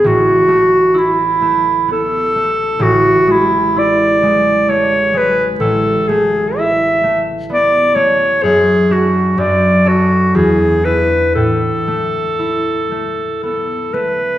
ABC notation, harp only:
X:1
M:3/4
L:1/8
Q:1/4=63
K:Emix
V:1 name="Harp"
[A,,,E] A, E A, B, A, | A,,, G, E G, A, G, | A,,, A, E A, B, A, | F,, [DF] F,, [DA] E,, [DE] |
A,, A, E A, B, A, |]